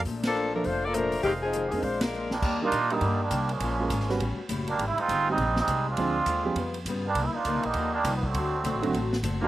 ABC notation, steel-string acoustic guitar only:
X:1
M:4/4
L:1/8
Q:"Swing" 1/4=203
K:Bb
V:1 name="Steel-string acoustic guitar"
[B,,F,A,D] z [B,,F,A,D] z [B,,F,A,D] z [B,,F,A,D] z | [F,,E,_A,C] z [F,,E,A,C] z [B,,A,CD] z [B,,A,CD] z | [K:Eb] [E,G,B,D] z [E,G,B,D] z [E,G,B,D] z [E,G,B,D] z | [B,,A,_DF] z [B,,A,DF] z [=A,,G,^C^F] z [A,,G,CF] z |
[A,,G,CE] z [A,,G,CE] z [A,,G,CE] z [A,,G,CE] z | [D,A,CF] z [D,A,CF] z [_D,G,_CF] z [D,G,CF] z | [C,F,B,E] z [C,F,B,E] z [C,F,B,E] z [C,F,B,E] z | [D,=A,C^F] z [D,A,CF] z [D,A,CF] z [D,A,CF] z |]